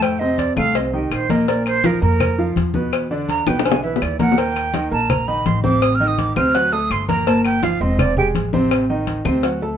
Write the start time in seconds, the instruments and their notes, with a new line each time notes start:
Already playing: upright bass F2, grand piano A2 A3 A4
0.02 flute G5, cowbell, high conga, claves
0.19 grand piano C3 C4 C5, flute D#5, high conga
0.38 flute D5, cowbell, high conga
0.57 upright bass C2, grand piano A2 A3 A4, flute F5, high conga, claves
0.75 grand piano C3 C4 C5, flute D#5, cowbell, high conga
0.93 grand piano D#3 D#4 D#5, flute G4, high conga
1.11 upright bass A#1, flute C5, cowbell, high conga, claves
1.29 grand piano A#2 A#3 A#4, flute D#5, cowbell, high conga
1.48 grand piano A#2 A#3 A#4, flute D5, cowbell, high conga
1.66 flute C5, cowbell, high conga, claves
1.84 grand piano F3 F4 F5, flute A#4, cowbell, high conga
2.02 upright bass F2, grand piano A#3 A#4 A#5, flute A#4, high conga
2.20 cowbell, high conga, low conga, claves
2.38 grand piano F3 F4 F5, high conga
2.56 upright bass E2, cowbell, high conga
2.74 grand piano B2 B3 B4, high conga
2.93 cowbell, claves
3.11 grand piano D3 D4 D5, high conga
3.29 flute A#5, cowbell, high conga
3.47 upright bass B1, grand piano B2 B3 B4, flute G5, high bongo, high conga, claves
3.59 high bongo
3.65 grand piano D3 D4 D5, flute G#5, cowbell, high conga
3.72 low bongo
3.83 grand piano E3 E4 E5, flute B4, high conga
3.96 low bongo
4.01 upright bass D#2, flute D5, cowbell, high conga, claves
4.19 grand piano A#2 A#3 A#4, flute F#5, cowbell, high conga
4.32 low bongo
4.37 grand piano A#2 A#3 A#4, flute G5, cowbell, high conga
4.55 cowbell, high conga, claves
4.73 grand piano D#3 D#4 D#5, cowbell, high conga
4.91 upright bass A#1, grand piano A#3 A#4 A#5, flute A5, high conga
5.10 flute A#5, cowbell, high conga, low conga, claves
5.28 grand piano D#3 D#4 D#5, flute B5, high conga
5.46 upright bass A1, flute C6, cowbell, high conga
5.64 grand piano C3 C4 C5, flute D6, high conga
5.82 flute D#6, cowbell, high conga, claves
5.95 flute F6
6.00 grand piano D#3 D#4 D#5, high conga
6.08 flute D#6
6.18 flute D6, cowbell, high conga
6.36 upright bass D2, grand piano C3 C4 C5, flute F6, high conga, claves
6.54 grand piano F#3 F#4 F#5, flute F#6, cowbell, high conga
6.72 grand piano A3 A4 A5, flute D#6, high conga
6.90 upright bass G1, flute C6, cowbell, high conga, claves
7.08 grand piano A#2 A#3 A#4, flute A#5, cowbell, high conga
7.27 grand piano A#2 A#3 A#4, flute A5, cowbell, high conga
7.45 flute G5, cowbell, high conga, claves
7.63 grand piano F3 F4 F5, flute F5, cowbell, high conga
7.81 upright bass E1, grand piano C4 C5 C6, flute D#5, high conga
7.99 flute D5, cowbell, high conga, low conga, claves
8.17 grand piano G#3 G#4 G#5, flute G4, high conga, low conga
8.35 upright bass A1, cowbell, high conga
8.53 grand piano C3 C4 C5, high conga
8.71 cowbell, claves
8.89 grand piano D#3 D#4 D#5, high conga
9.07 cowbell, high conga
9.25 upright bass D2, grand piano C3 C4 C5, high conga, claves
9.43 grand piano F#3 F#4 F#5, cowbell, high conga
9.61 grand piano A3 A4 A5, high conga